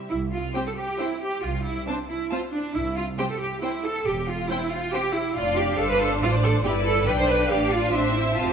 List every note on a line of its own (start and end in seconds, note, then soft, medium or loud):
0.10 0.47 C2 soft
0.10 0.18 E4 medium
0.32 0.54 F4 medium
0.55 0.64 C4 soft
0.55 0.59 G4 medium
0.55 0.63 C5 soft
0.55 0.63 G5 soft
0.67 0.71 A4 medium
0.77 0.98 G4 medium
0.99 1.08 C4 soft
0.99 1.21 E4 medium
0.99 1.07 C5 soft
0.99 1.08 G5 soft
1.22 1.43 G4 medium
1.43 1.80 C2 soft
1.43 1.66 F4 medium
1.65 1.87 E4 medium
1.87 1.96 C4 soft
1.87 1.95 D4 medium
1.87 1.96 C5 soft
1.87 1.95 A5 soft
2.10 2.31 E4 medium
2.31 2.39 C4 soft
2.31 2.39 F4 medium
2.31 2.41 C5 soft
2.31 2.39 A5 soft
2.53 2.75 D4 medium
2.75 3.12 C2 medium
2.75 2.97 E4 medium
2.97 3.05 F4 medium
3.18 3.27 C4 soft
3.18 3.23 G4 medium
3.18 3.26 C5 soft
3.18 3.28 G5 soft
3.31 3.41 A4 medium
3.41 3.62 G4 medium
3.62 3.70 C4 soft
3.62 3.84 E4 medium
3.62 3.71 C5 soft
3.62 3.71 G5 soft
3.85 4.07 A4 medium
4.06 4.43 E1 medium
4.06 4.29 G4 medium
4.29 4.50 F4 medium
4.50 4.58 C4 soft
4.50 4.72 E4 medium
4.50 4.59 C5 soft
4.50 4.59 G5 medium
4.72 4.93 F4 medium
4.93 5.02 C4 soft
4.93 5.15 G4 medium
4.93 5.01 C5 soft
4.93 5.03 G5 soft
5.15 5.36 E4 medium
5.36 5.76 F1 medium
5.36 6.60 D4 medium
5.36 5.57 F4 medium
5.36 5.76 D5 medium
5.36 6.18 F5 medium
5.58 5.79 G4 medium
5.79 6.21 G1 medium
5.79 5.90 A4 medium
5.79 6.63 C5 medium
5.91 6.01 B4 medium
6.01 6.09 A4 medium
6.21 6.64 A1 medium
6.21 6.31 F4 medium
6.21 6.62 D5 medium
6.44 6.52 A4 medium
6.64 7.06 G1 medium
6.64 7.06 E4 medium
6.64 6.73 G4 medium
6.64 7.06 B4 medium
6.64 7.06 D5 medium
6.86 7.07 A4 medium
7.07 7.50 B1 medium
7.07 7.49 D4 medium
7.07 7.12 B4 medium
7.07 7.49 D5 medium
7.07 7.50 G5 medium
7.19 7.29 C5 medium
7.29 7.50 B4 medium
7.49 7.93 A1 medium
7.49 7.93 D4 medium
7.49 7.72 G4 medium
7.49 7.92 D5 medium
7.49 7.93 F5 medium
7.73 7.94 F4 medium
7.92 8.34 A1 medium
7.92 8.34 C4 medium
7.92 8.15 D4 medium
7.92 8.33 C5 medium
7.92 8.33 E5 medium
8.15 8.37 E4 medium
8.36 8.53 F1 medium
8.36 8.53 C4 medium
8.36 8.48 F4 medium
8.36 8.53 C5 medium
8.36 8.53 A5 medium
8.49 8.53 G4 medium